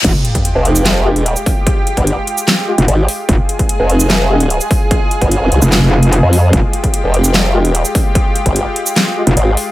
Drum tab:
CC |x---------------|----------------|----------------|----------------|
HH |x-xxx-x-x--xx-o-|x-xxx-x-x--xx-o-|x-xxx-x-x--xx-o-|x-xxx-x-x--xx-o-|
SH |-------x-----x--|-------x--------|-------x-----x--|-------x--------|
CP |--------x-------|--------x-------|--------x-------|--------x-------|
SD |--------o-------|--------o-------|--------o-------|--------o-------|
BD |o--o----------o-|o--o------------|o--o----------o-|o--o------------|

CC |----------------|----------------|
HH |x-xxx-x-x--xx-o-|x-xxx-x-x--xx-o-|
SH |-------x-----x--|-------x--------|
CP |--------x-------|--------x-------|
SD |--------o-------|--------o-------|
BD |o--o----------o-|o--o------------|